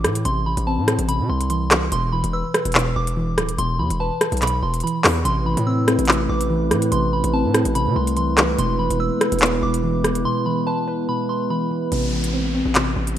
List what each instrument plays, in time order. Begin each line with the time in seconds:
Already playing: synth pluck C3 C4, synth bell D6, impact
0.04 808-style bass A2, synth pluck E3, cross-stick, closed hi-hat
0.15 closed hi-hat
0.25 808-style bass A1, synth pluck C3, synth bell C6, closed hi-hat
0.46 synth pluck E3, synth bell B5
0.57 808-style bass A1, closed hi-hat
0.67 synth pluck C4, synth bell A5
0.78 808-style bass A2
0.88 synth pluck C4, cross-stick, closed hi-hat
0.99 808-style bass A1, closed hi-hat
1.08 synth pluck C3, synth bell B5, closed hi-hat
1.20 808-style bass C3
1.29 808-style bass C2, synth bell C6
1.41 closed hi-hat
1.50 synth pluck E3, synth bell C6, closed hi-hat
1.71 synth pluck E3, cross-stick, clap, closed hi-hat
1.92 808-style bass E1, synth pluck B2, synth bell C6, closed hi-hat
2.12 synth pluck E3, synth bell B5
2.24 808-style bass E1, closed hi-hat
2.33 synth pluck B4, synth bell E6
2.54 synth pluck B4, cross-stick, closed hi-hat
2.65 808-style bass E1, closed hi-hat
2.72 synth pluck B2, clap, closed hi-hat
2.79 closed hi-hat
2.96 808-style bass E1, synth bell D6
3.07 closed hi-hat
3.17 synth pluck E3
3.38 808-style bass D1, synth pluck E3, cross-stick, closed hi-hat
3.49 808-style bass E1, closed hi-hat
3.58 808-style bass E1, synth pluck B2, synth bell C6, closed hi-hat
3.79 808-style bass E2, synth pluck E3, synth bell B5
3.90 808-style bass E1, closed hi-hat
4.00 synth pluck B4, synth bell A5
4.21 synth pluck B4, cross-stick, closed hi-hat
4.32 808-style bass B1, closed hi-hat
4.37 closed hi-hat
4.42 synth pluck B2, synth bell B5, clap, closed hi-hat
4.47 closed hi-hat
4.62 808-style bass E1, synth bell C6
4.74 closed hi-hat
4.80 synth pluck E3, synth bell B5, closed hi-hat
4.87 closed hi-hat
5.04 808-style bass E2, synth pluck E3, cross-stick, clap, open hi-hat
5.25 808-style bass A1, synth pluck C3, glass harmonica A3 C4 E4 B4, synth bell C6, closed hi-hat
5.46 synth pluck E3, synth bell B5
5.57 808-style bass A2, closed hi-hat
5.67 synth pluck C4, synth bell E6
5.88 synth pluck C4, cross-stick, closed hi-hat
5.99 808-style bass A1, closed hi-hat
6.05 synth pluck C3, clap, closed hi-hat
6.12 closed hi-hat
6.29 808-style bass A1, synth bell D6
6.41 closed hi-hat
6.50 synth pluck E3
6.71 808-style bass A2, synth pluck E3, cross-stick, closed hi-hat
6.82 closed hi-hat
6.92 808-style bass A1, synth pluck C3, synth bell C6, closed hi-hat
7.13 synth pluck E3, synth bell B5
7.24 808-style bass A1, closed hi-hat
7.34 synth pluck C4, synth bell A5
7.44 808-style bass A2
7.54 synth pluck C4, cross-stick, closed hi-hat
7.65 808-style bass A1, closed hi-hat
7.75 synth pluck C3, synth bell B5, closed hi-hat
7.86 808-style bass C3
7.96 808-style bass C2, synth bell C6
8.07 closed hi-hat
8.17 synth pluck E3, synth bell C6, closed hi-hat
8.38 synth pluck E3, cross-stick, clap, closed hi-hat
8.58 808-style bass E1, synth pluck B2, glass harmonica G#3 B3 E4, synth bell C6, closed hi-hat
8.79 synth pluck E3, synth bell B5
8.90 808-style bass E1, closed hi-hat
9.00 synth pluck B4, synth bell E6
9.21 synth pluck B4, cross-stick, closed hi-hat
9.32 808-style bass E1, closed hi-hat
9.39 synth pluck B2, clap, closed hi-hat
9.46 closed hi-hat
9.63 808-style bass E1, synth bell D6
9.74 closed hi-hat
9.83 synth pluck E3
10.04 synth pluck E3, cross-stick, closed hi-hat
10.15 closed hi-hat
10.25 synth pluck B2, synth bell C6
10.46 synth pluck E3, synth bell B5
10.67 synth pluck B4, synth bell A5
10.88 synth pluck B4
11.09 synth pluck B2, synth bell B5
11.29 synth bell C6
11.50 synth pluck E3, synth bell B5
11.71 synth pluck E3
11.92 808-style bass A1, synth pluck C3, closed hi-hat, downlifter
12.13 synth pluck E3
12.24 closed hi-hat
12.33 synth pluck C4
12.54 synth pluck C4
12.65 808-style bass A1
12.75 synth pluck C3, clap, closed hi-hat
12.96 808-style bass A1
13.07 closed hi-hat